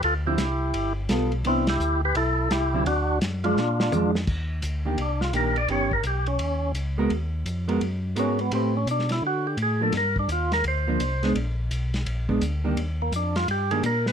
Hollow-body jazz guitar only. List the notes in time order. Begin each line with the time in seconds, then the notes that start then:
0.26 D3 F3 C4 E4
1.09 G3 B3 F4 A4
1.45 E3 B3 D4
2.74 D3 F#3 C4 E4
3.44 F3 G#3 D4
3.92 F3 G#3 D4
4.85 D#3 A#3 D4 G4
5.33 D#3 A#3 D4 G4
5.69 D#3 B3 C#4 G4
6.98 G#3 B3 F#4 A#4
7.68 G#3 B3 F#4 A#4
8.16 G#3 B3 F#4 A#4
8.52 A3 C4 G4 B4
9.81 F3 A#3 D4
10.87 F3 A#3 D4
11.23 G#3 B3 D4
12.29 G#3 B3 D4
12.64 D#3 G3 A#3 D4
13.71 D#3 G3 A#3 D4